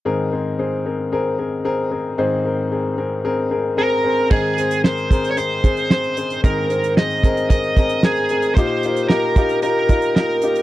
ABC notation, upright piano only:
X:1
M:4/4
L:1/8
Q:1/4=113
K:Ab
V:1 name="Upright piano"
[CAB] [CAc] [CAc] [CAB] [CAB] [CAB] [CAB] [CAB] | [CAc] [CAB] [CAB] [CAB] [CAB] [CAB] [CAB] [CAc] | [CAB] [CAc] [CAB] [CAB] [CAc] [CAc] [CAc] [CAc] | [CAc] [CAc] [CAc] [CAB] [CAB] [CAB] [CAB] [CAB] |
[EFG] [EFB] [EFG] [EFG] [EFB] [EFB] [EFB] [EFG] |]
V:2 name="Upright piano" clef=bass
[A,,E,]8 | [A,,E,]8 | [A,,E,]3 z4 z | [A,,E,]3 z4 z |
B,,3 z4 z |]